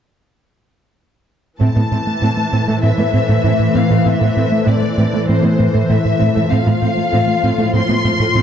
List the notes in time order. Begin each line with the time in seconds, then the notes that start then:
1.60 A2 E3 A3 C4 A4 C5 A5
1.76 A2 B3
1.91 A2 C4
2.07 A3
2.21 A2 C4
2.37 A3
2.53 A2 C4
2.68 A2 A3
2.82 A2 C4 E5
2.98 A2 A3 B3
3.12 A2 C4
3.28 A2 A3
3.44 A2 C4
3.59 A2
3.75 A2 C4 F5
3.90 A2 A3
4.06 A2 C4 E5
4.21 A2 B3
4.37 A2 C4
4.52 A3
4.67 A2 C4 D5
4.83 A3
4.98 A2 C4
5.13 A2 A3
5.28 A2 C4 C5
5.43 A2 A3 B3
5.59 A2 C4
5.74 A2 A3
5.89 A2 C4 E5
6.05 A2
6.20 A2 C4
6.35 A2 A3
6.50 A2 F3 A3 C4 F4 A4 C5 F5
6.66 A2 B3
6.82 A2 C4
6.97 A3
7.12 A2 C4
7.28 A3
7.43 A2 C4
7.58 A2 A3
7.73 A2 C4 C6
7.89 A2 A3 B3
8.04 A2 C4
8.19 A2 A3
8.35 A2 C4